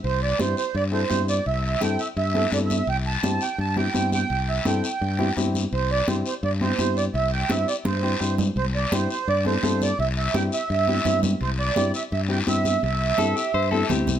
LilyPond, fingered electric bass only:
\new Staff \with { instrumentName = "Fingered electric bass" } { \clef bass \time 4/4 \key c \major \tempo 4 = 169 c,4 g,8 r8 g,4 g,4 | c,4 g,8 r8 g,4 g,4 | c,4 g,8 r8 g,4 g,4 | c,4 g,8 r8 g,4 g,4 |
c,4 g,8 r8 g,4 g,4 | c,4 g,8 r8 g,4 g,4 | c,4 g,8 r8 g,4 g,4 | c,4 g,8 r8 g,4 g,4 |
c,4 g,8 r8 g,4 g,4 | c,4 g,8 r8 g,4 d,8 c,8 | }